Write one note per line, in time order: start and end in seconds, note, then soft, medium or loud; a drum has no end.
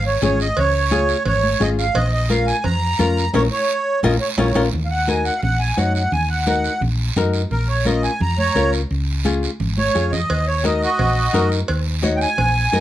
0.00 0.16 G#1 loud
0.07 0.22 C#5 medium
0.22 0.50 G#1 medium
0.22 0.46 C#4 medium
0.22 0.47 F4 medium
0.22 0.47 G#4 medium
0.22 0.39 C#5 medium
0.22 high conga medium
0.22 low conga medium
0.22 short guiro medium
0.40 0.58 D#5 medium
0.40 short guiro medium
0.57 1.13 C#2 loud
0.57 1.23 C#5 medium
0.57 cowbell medium
0.57 low conga medium
0.57 long guiro medium
0.91 1.16 C#4 medium
0.91 1.16 F4 medium
0.91 1.16 G#4 medium
0.91 high conga medium
0.91 short guiro medium
1.09 short guiro medium
1.25 1.54 G#1 medium
1.25 1.62 C#5 medium
1.25 cowbell medium
1.25 low conga medium
1.25 long guiro medium
1.44 high conga medium
1.60 1.89 G#1 medium
1.60 1.85 C#4 medium
1.60 1.85 F4 medium
1.60 1.85 G#4 medium
1.60 1.69 D#5 medium
1.60 high conga medium
1.60 short guiro medium
1.78 1.96 F5 medium
1.78 short guiro medium
1.95 2.51 A#1 medium
1.95 2.12 D#5 medium
1.95 cowbell loud
1.95 low conga medium
1.95 long guiro medium
2.13 2.29 D#5 medium
2.29 2.54 C#4 medium
2.29 2.54 F4 medium
2.29 2.55 A#4 medium
2.29 2.46 F5 medium
2.29 high conga medium
2.29 short guiro medium
2.47 2.63 G#5 medium
2.47 short guiro medium
2.64 2.93 F2 medium
2.64 3.30 A#5 medium
2.64 cowbell medium
2.64 low conga medium
2.64 long guiro medium
2.99 3.28 F2 medium
2.99 3.24 C#4 medium
2.99 3.24 F4 medium
2.99 3.24 A#4 medium
2.99 high conga medium
2.99 short guiro medium
3.17 short guiro medium
3.34 3.48 A#1 medium
3.34 3.46 C#4 medium
3.34 3.46 F4 medium
3.34 3.46 A#4 medium
3.34 3.42 C#5 medium
3.34 high conga loud
3.34 high timbale medium
3.34 long guiro medium
3.52 4.00 C#5 medium
4.03 4.17 A#1 loud
4.03 4.15 C#4 loud
4.03 4.15 F4 loud
4.03 4.15 A#4 loud
4.03 4.12 D#5 medium
4.03 high conga medium
4.03 high timbale medium
4.03 long guiro loud
4.21 4.29 C#5 medium
4.38 4.51 A#1 medium
4.38 4.50 C#4 loud
4.38 4.50 F4 loud
4.38 4.50 A#4 medium
4.38 4.63 C#5 medium
4.38 high conga loud
4.38 high timbale loud
4.55 4.69 A#1 medium
4.55 4.67 C#4 medium
4.55 4.67 F4 medium
4.55 4.67 A#4 medium
4.55 high conga loud
4.55 high timbale medium
4.55 long guiro loud
4.73 5.29 D#2 medium
4.73 low conga medium
4.73 long guiro medium
4.85 4.88 F5 medium
4.90 5.07 F#5 medium
5.07 5.32 D#4 medium
5.07 5.32 F#4 medium
5.07 5.33 A#4 medium
5.07 5.25 G#5 medium
5.07 high conga medium
5.07 short guiro medium
5.25 5.41 F#5 medium
5.25 short guiro medium
5.38 5.41 F5 medium
5.43 5.71 A#1 medium
5.43 5.60 F#5 medium
5.43 low conga medium
5.43 long guiro medium
5.60 5.77 G#5 medium
5.77 6.06 F#2 medium
5.77 6.02 D#4 medium
5.77 6.02 F#4 medium
5.77 6.02 C#5 medium
5.77 5.93 F#5 medium
5.77 high conga medium
5.77 short guiro medium
5.94 6.12 F#5 medium
5.94 short guiro medium
6.12 6.68 D#2 medium
6.12 6.29 G#5 medium
6.12 low conga medium
6.12 long guiro medium
6.30 6.45 F#5 medium
6.46 6.71 D#4 medium
6.46 6.71 F#4 medium
6.46 6.72 A#4 medium
6.46 6.81 F#5 medium
6.46 high conga medium
6.46 short guiro medium
6.64 short guiro medium
6.81 7.10 A#1 medium
6.81 low conga medium
6.81 long guiro medium
7.16 7.44 F#2 medium
7.16 7.41 D#4 medium
7.16 7.41 F#4 medium
7.16 7.41 A#4 medium
7.16 high conga medium
7.16 low conga medium
7.16 short guiro medium
7.34 short guiro medium
7.51 8.07 A#1 medium
7.51 7.69 A#4 medium
7.51 low conga medium
7.51 long guiro medium
7.69 7.86 C#5 medium
7.85 8.10 C#4 medium
7.85 8.10 F4 medium
7.85 8.11 A#4 medium
7.85 8.03 D#5 medium
7.85 high conga medium
7.85 short guiro medium
8.03 8.21 G#5 medium
8.03 short guiro medium
8.20 8.49 F2 medium
8.20 8.38 A#5 medium
8.20 low conga medium
8.20 long guiro medium
8.38 8.71 C#5 medium
8.38 8.73 A#5 medium
8.38 high conga medium
8.55 8.84 C#2 medium
8.55 8.80 C#4 medium
8.55 8.80 F4 medium
8.55 8.80 A#4 medium
8.55 high conga medium
8.55 short guiro medium
8.73 short guiro medium
8.91 9.46 C#2 medium
8.91 long guiro medium
9.25 9.49 C#4 medium
9.25 9.50 F4 medium
9.25 9.50 G#4 medium
9.25 high conga medium
9.25 short guiro medium
9.43 short guiro medium
9.60 9.88 G#1 medium
9.60 low conga medium
9.60 long guiro medium
9.78 10.12 C#5 medium
9.78 high conga medium
9.94 10.23 F2 medium
9.94 10.19 C#4 medium
9.94 10.19 F4 medium
9.94 10.19 G#4 medium
9.94 short guiro medium
10.12 10.46 D#5 medium
10.12 low conga medium
10.12 short guiro medium
10.30 10.85 D#2 medium
10.30 cowbell loud
10.30 long guiro medium
10.47 10.64 C#5 medium
10.63 10.88 D#4 medium
10.63 10.89 F#4 medium
10.63 10.89 A#4 medium
10.63 10.82 D#5 medium
10.63 high conga medium
10.63 short guiro medium
10.82 11.48 F#4 medium
10.82 11.50 D#5 medium
10.82 short guiro medium
10.99 11.27 A#1 medium
10.99 cowbell medium
10.99 low conga medium
10.99 long guiro medium
11.33 11.62 F#2 medium
11.33 11.58 D#4 medium
11.33 11.58 F#4 medium
11.33 11.59 A#4 loud
11.33 high conga medium
11.33 low conga medium
11.33 low timbale medium
11.33 short guiro medium
11.52 short guiro medium
11.68 12.25 D#2 loud
11.68 cowbell loud
11.68 long guiro medium
12.02 12.27 D#4 medium
12.02 12.27 F#4 medium
12.02 12.28 C#5 medium
12.02 high conga medium
12.02 short guiro medium
12.17 12.19 G5 medium
12.21 12.80 G#5 loud
12.21 short guiro medium
12.38 12.66 A#1 loud
12.38 cowbell medium
12.38 low conga medium
12.38 long guiro medium
12.72 12.80 F#2 medium
12.72 12.80 D#4 medium
12.72 12.80 F#4 medium
12.72 12.80 A#4 loud
12.72 high conga medium
12.72 short guiro medium